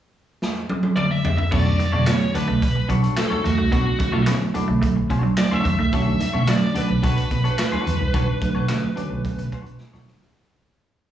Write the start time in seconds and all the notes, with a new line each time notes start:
0.42 snare
0.69 high tom
0.83 high tom
0.96 D5, mid tom
1.11 E5
1.25 floor tom
1.38 E5, floor tom
1.51 B1 D3 F#3 A3 B3 C#4 D4 F#4 A4 C#5 D5, kick, crash, low conga
1.65 muted clean electric guitar stroke, muted conga
1.79 muted clean electric guitar stroke, muted fingered electric bass stroke, closed hi-hat, high conga
1.92 B2 C#3 D3 F#3 A3 D4 F#4 A4 C#5
2.07 B3 C#5, muted clean electric guitar stroke, snare, clap, closed hi-hat, muted conga
2.21 muted conga
2.34 D4 F#4 A4 B4 D5, muted clean electric guitar stroke, muted fingered electric bass stroke, closed hi-hat, low conga
2.48 B1 A3, muted clean electric guitar stroke
2.62 B1, muted clean electric guitar stroke, kick, closed hi-hat
2.75 muted clean electric guitar stroke
2.89 B2 F#3 D4 F#4 A4 C#5, kick, closed hi-hat
3.03 D4 F#4 A4 C#5, closed hi-hat
3.16 A4, muted clean electric guitar stroke, snare, clap, closed hi-hat, muted conga
3.30 D4 F#4 A4 C#5, high conga
3.44 E2 A3 F#4, muted clean electric guitar stroke, closed hi-hat, low conga
3.58 C2 A3, muted clean electric guitar stroke, high conga
3.71 B1 B3 D4 F#4 A4 C#5, kick, closed hi-hat, muted conga, low conga
3.85 muted clean electric guitar stroke, muted conga
3.99 D3 F#3 A3 C#4, muted clean electric guitar stroke, muted fingered electric bass stroke, kick, closed hi-hat, high conga
4.12 B2 A3 D4 F#4 A4 C#5
4.26 D3 F#3 A3 B3 C#4, muted clean electric guitar stroke, snare, clap, closed hi-hat, muted conga
4.41 muted conga
4.54 D3 F#3 A3 D4 E4 F#4 A4 D5, muted clean electric guitar stroke, muted fingered electric bass stroke, closed hi-hat, low conga
4.68 B1 A3, muted clean electric guitar stroke
4.82 B1 A3, muted clean electric guitar stroke, kick, closed hi-hat, muted conga
4.96 muted clean electric guitar stroke
5.10 B2 D4 F#4 A4 C#5, muted clean electric guitar stroke, kick, closed hi-hat
5.23 F#3, muted clean electric guitar stroke
5.37 F#3 D5, muted clean electric guitar stroke, snare, clap, closed hi-hat, muted conga
5.51 D3 F#3 A3 C#4 D4 F#4 A4 C#5 E5, high conga
5.65 E2, muted clean electric guitar stroke, kick, closed hi-hat, low conga
5.79 C2 A3 E5, muted clean electric guitar stroke, high conga
5.93 D3 F#3 A3 C#4 D4 F#4 A4 C#5, kick, closed hi-hat, muted conga, low conga
6.07 muted clean electric guitar stroke, muted conga
6.20 muted clean electric guitar stroke, muted fingered electric bass stroke, closed hi-hat, high conga
6.33 B2 D3 F#3 A3 C#4 D4 F#4 A4 C#5
6.47 D5, muted clean electric guitar stroke, snare, clap, closed hi-hat, muted conga
6.62 muted conga
6.74 D4 F#4 A4 B4 D5, muted fingered electric bass stroke, closed hi-hat, low conga
6.88 B1, muted clean electric guitar stroke
7.02 B1 D4 F#4 A4 B4 C#5, kick, closed hi-hat, muted conga
7.18 closed hi-hat
7.31 B2, muted clean electric guitar stroke, kick, closed hi-hat
7.44 D4 F#4 A4 C#5, closed hi-hat
7.58 muted clean electric guitar stroke, snare, clap, closed hi-hat, muted conga
7.72 D4 F#4 A4 C#5, muted conga, high conga
7.86 E2, closed hi-hat, low conga
8.00 C2, muted clean electric guitar stroke, high conga
8.14 B1 D4 F#4 A4 C#5, kick, closed hi-hat, muted conga, low conga
8.28 muted clean electric guitar stroke
8.41 D3 F#3 A3 D4, muted clean electric guitar stroke, muted fingered electric bass stroke, kick, closed hi-hat, high conga
8.55 B2 D4 F#4 A4 C#5
8.68 D3 F#3 A3 C#4, snare, clap, closed hi-hat
8.83 muted conga, high conga
8.96 D3 F#3 A3 C#4 D4 F#4 A4 D5, muted fingered electric bass stroke, closed hi-hat, low conga
9.10 B1, muted clean electric guitar stroke
9.24 muted clean electric guitar stroke, kick, closed hi-hat, muted conga
9.38 B2, muted clean electric guitar stroke, closed hi-hat, muted conga
9.52 D4 F#4 A4 C#5, kick, closed hi-hat
9.66 B2, muted clean electric guitar stroke, closed hi-hat
9.80 muted clean electric guitar stroke, snare, muted conga
9.93 B2 D3 F#3 A3 D4 F#4 A4 C#5, snare, muted conga, high conga
10.07 muted clean electric guitar stroke, snare, low conga
10.21 C2, muted clean electric guitar stroke, snare, high conga